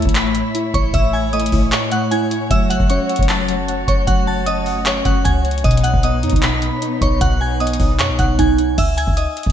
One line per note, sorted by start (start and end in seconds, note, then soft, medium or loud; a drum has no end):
0.00 0.14 A2 medium
0.00 0.74 A3 medium
0.00 5.60 A3 medium
0.00 0.53 E4 loud
0.00 2.47 E4 medium
0.00 8.74 C#5 medium
0.00 0.13 E5 medium
0.00 0.13 E6 medium
0.00 closed hi-hat medium
0.06 0.43 A1 loud
0.06 kick loud
0.06 closed hi-hat medium
0.15 0.34 A2 medium
0.15 0.70 B5 medium
0.15 0.71 B6 medium
0.15 clap loud
0.15 closed hi-hat medium
0.35 0.93 A2 medium
0.35 closed hi-hat medium
0.55 0.73 E4 loud
0.55 closed hi-hat medium
0.74 0.93 A1 loud
0.74 1.51 E4 medium
0.74 0.91 C#5 medium
0.74 0.90 C#6 medium
0.74 kick loud
0.74 closed hi-hat medium
0.94 1.50 A1 loud
0.94 1.12 A2 medium
0.94 1.10 E5 medium
0.94 1.10 E6 medium
0.94 kick loud
0.94 closed hi-hat medium
1.13 1.71 A2 medium
1.13 1.30 G#5 medium
1.13 1.30 G#6 medium
1.33 2.31 A3 medium
1.33 1.70 D#5 medium
1.33 1.70 D#6 medium
1.33 closed hi-hat soft
1.40 closed hi-hat medium
1.46 closed hi-hat medium
1.52 1.72 A1 loud
1.52 2.10 E4 medium
1.52 kick loud
1.52 open hi-hat medium
1.72 1.91 A2 medium
1.72 1.89 C#5 medium
1.72 1.88 C#6 medium
1.72 clap loud
1.72 closed hi-hat medium
1.92 2.51 A2 medium
1.92 2.08 F#5 medium
1.92 2.08 F#6 medium
1.92 closed hi-hat medium
2.11 2.30 E4 loud
2.11 2.48 G#5 medium
2.11 2.49 G#6 medium
2.11 closed hi-hat medium
2.31 2.51 E4 medium
2.31 closed hi-hat medium
2.50 2.79 F#1 loud
2.50 2.69 F#3 medium
2.50 5.61 F#4 medium
2.50 2.67 E5 loud
2.50 2.67 E6 medium
2.50 kick loud
2.50 closed hi-hat medium
2.70 3.28 F#3 medium
2.70 2.86 F#5 medium
2.70 2.87 F#6 medium
2.70 closed hi-hat medium
2.80 2.99 F#1 loud
2.80 kick loud
2.90 3.88 C#4 medium
2.90 3.27 C#5 medium
2.90 3.27 C#6 medium
2.90 closed hi-hat medium
3.09 3.67 F#5 loud
3.09 closed hi-hat medium
3.16 3.85 F#1 loud
3.16 kick loud
3.16 closed hi-hat medium
3.23 closed hi-hat medium
3.29 3.47 F#3 medium
3.29 3.84 A5 medium
3.29 3.85 A6 medium
3.29 clap loud
3.29 closed hi-hat medium
3.48 4.06 F#3 medium
3.48 closed hi-hat medium
3.68 3.87 F#5 loud
3.68 closed hi-hat medium
3.88 4.07 F#1 loud
3.88 4.05 C#5 medium
3.88 4.65 F#5 medium
3.88 4.04 C#6 medium
3.88 kick loud
3.88 closed hi-hat medium
4.07 5.02 F#1 loud
4.07 4.26 F#3 medium
4.07 4.24 F#5 loud
4.07 4.24 F#6 medium
4.07 kick loud
4.07 closed hi-hat medium
4.27 4.85 F#3 medium
4.27 4.43 A5 medium
4.27 4.44 A6 medium
4.46 5.45 C#4 medium
4.46 4.84 D#5 medium
4.46 4.83 D#6 medium
4.46 closed hi-hat medium
4.66 5.24 F#5 loud
4.66 open hi-hat medium
4.85 5.04 F#3 medium
4.85 5.03 C#5 medium
4.85 5.02 C#6 medium
4.85 clap loud
4.85 closed hi-hat medium
5.05 5.24 F#1 loud
5.05 5.64 F#3 medium
5.05 5.22 F#5 medium
5.05 5.22 F#6 medium
5.05 kick loud
5.05 closed hi-hat medium
5.25 5.63 C#2 loud
5.25 5.44 F#5 loud
5.25 5.62 G#5 medium
5.25 5.62 G#6 medium
5.25 kick loud
5.25 closed hi-hat medium
5.45 5.64 F#5 medium
5.45 closed hi-hat soft
5.51 closed hi-hat medium
5.58 closed hi-hat medium
5.64 5.93 B1 loud
5.64 5.83 B2 medium
5.64 8.75 B3 medium
5.64 8.75 D#4 medium
5.64 5.81 D#5 medium
5.64 5.81 D#6 medium
5.64 kick loud
5.64 closed hi-hat medium
5.71 closed hi-hat medium
5.77 closed hi-hat medium
5.84 6.42 B2 medium
5.84 6.00 F#5 medium
5.84 6.00 F#6 medium
5.84 closed hi-hat medium
5.94 6.25 B1 loud
5.94 kick loud
6.03 7.02 B3 medium
6.03 6.41 D#5 medium
6.03 6.40 D#6 medium
6.03 closed hi-hat medium
6.23 6.32 F#2 loud
6.23 6.81 D#4 loud
6.23 closed hi-hat medium
6.30 6.71 B1 loud
6.30 kick loud
6.30 closed hi-hat medium
6.36 closed hi-hat medium
6.42 6.61 B2 medium
6.42 6.98 B5 medium
6.42 6.98 B6 medium
6.42 clap loud
6.42 closed hi-hat medium
6.62 7.20 B2 medium
6.62 closed hi-hat medium
6.82 7.00 D#4 loud
6.82 closed hi-hat medium
7.01 7.20 B1 loud
7.01 7.79 D#4 medium
7.01 7.18 C#5 medium
7.01 7.18 C#6 medium
7.01 kick loud
7.01 closed hi-hat medium
7.21 7.78 B1 loud
7.21 7.39 B2 medium
7.21 7.37 F#5 loud
7.21 7.38 F#6 medium
7.21 kick loud
7.21 closed hi-hat medium
7.41 7.98 B2 medium
7.41 7.57 G#5 medium
7.41 7.58 G#6 medium
7.60 8.58 B3 medium
7.60 7.98 D#5 medium
7.60 7.97 D#6 medium
7.60 closed hi-hat soft
7.67 closed hi-hat medium
7.73 closed hi-hat medium
7.80 8.01 B1 loud
7.80 8.38 D#4 loud
7.80 kick loud
7.80 open hi-hat medium
7.99 8.11 F#2 loud
7.99 8.18 B2 medium
7.99 8.16 C#5 medium
7.99 8.16 C#6 loud
7.99 clap loud
7.99 closed hi-hat medium
8.09 8.19 B1 loud
8.19 8.38 B1 loud
8.19 8.78 B2 medium
8.19 8.35 F#5 medium
8.19 8.36 F#6 medium
8.19 kick loud
8.19 closed hi-hat medium
8.39 8.76 B1 loud
8.39 8.57 D#4 loud
8.39 8.76 G#5 medium
8.39 8.76 G#6 medium
8.39 kick loud
8.39 closed hi-hat medium
8.58 8.78 D#4 medium
8.58 closed hi-hat medium
8.78 9.06 C#2 loud
8.78 8.94 E5 loud
8.78 8.95 E6 medium
8.78 kick loud
8.78 closed hi-hat medium
8.78 crash medium
8.97 9.14 G#5 medium
8.97 9.14 G#6 medium
8.97 closed hi-hat medium
9.07 9.26 C#2 loud
9.07 kick medium
9.17 9.52 D#5 medium
9.17 9.52 D#6 medium
9.17 closed hi-hat medium
9.37 closed hi-hat medium
9.43 9.52 C#2 loud
9.43 kick loud
9.43 closed hi-hat medium